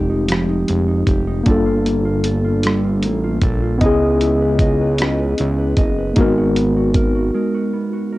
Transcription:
Already playing: F1 F3 G#3 C4 D#4 G4
0.10 D#4
0.28 F3 G4, cross-stick, closed hi-hat
0.49 D#4
0.68 F1 G#3, closed hi-hat
0.88 D#4
1.07 F1 G4, kick, closed hi-hat
1.27 D#4
1.43 G1 G3 A#3 D4, kick, closed hi-hat
1.48 F4 A4
1.66 F4
1.86 A#3, closed hi-hat
2.05 F4
2.24 A4, closed hi-hat
2.45 F4
2.63 G3 A4, cross-stick, closed hi-hat
2.85 F4
3.03 A1 A#3, closed hi-hat
3.24 F4
3.42 A#1 A4, kick, closed hi-hat
3.63 F4
3.79 C#2 B3 D#5, kick, closed hi-hat
3.83 C#4 E4 G#4 D#5
4.02 B4
4.21 E4, closed hi-hat
4.41 B4
4.59 D#5, kick, closed hi-hat
4.81 B4
4.98 C#4 D#5, cross-stick, closed hi-hat
5.20 B4
5.38 C#2 E4, closed hi-hat
5.59 B4
5.77 F#1 D#5, kick, closed hi-hat
5.98 B4
6.13 A#3 D#4, kick, closed hi-hat
6.18 G#1 G#3 B3 F#4 A#4
6.38 F#4
6.56 B3, closed hi-hat
6.77 F#4
6.94 A#4, kick, closed hi-hat
7.15 F#4
7.34 G#3 A#4
7.54 F#4
7.73 B3
7.93 F#4
8.13 A#4

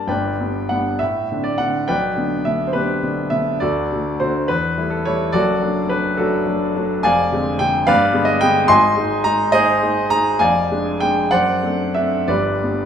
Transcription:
Already playing: G2 G3 A#3 D4 G4 A#4 D5 A5
0.07 G1 G2 B4 D5 G5
0.40 G3 B3 D4
0.69 G3 B3 D4 F#5
0.99 A2 E5
1.32 D3 C4 D4
1.44 D5
1.58 D3 C4 D4 F#5
1.88 B1 B4 D5 G5
2.17 D3 B3 D4
2.45 D3 B3 D4 E5
2.67 C5
2.73 D3 B3 D4 G4 B4
3.03 D3 B3 D4
3.30 D3 B3 D4 E5
3.60 D2 F#4 A4 D5
3.92 D3 A3 F#4
4.20 D3 A3 F#4 C5
4.48 E2 B4
4.77 G3 A3 E4
4.90 A4
5.05 G3 A3 E4 C#5
5.32 F#1 F#2 F#4 A4 D5
5.62 F#3 A3 D4
5.89 F#3 A3 D4 B4
6.17 F#3 A3 D4 F#4 A4
6.46 F#3 A3 D4
6.76 F#3 A3 D4
7.03 F1 F2 D5 F5 G#5
7.32 D3 G#3 C4
7.59 D3 G#3 C4 G5
7.87 G2 B4 D5 F5
8.13 D3 G#3 B3
8.25 D#5
8.41 D3 G#3 B3 G5
8.68 G#1 G#2 D#5 G#5 C6
8.97 G#3 D#4
9.24 G#3 D#4 A#5
9.52 G#3 D#4 G#4 C5 D#5
9.82 G#3 D#4
10.10 G#3 D#4 A#5
10.39 F1 F2 D5 F5 G#5
10.72 G#3 D4
11.00 G#3 D4 G5
11.31 F#2 C5 D5 F#5
11.63 A3 C4 D4
11.94 A3 C4 D4 E5
12.28 G1 G2 G4 B4 D5
12.63 G3 B3 D4

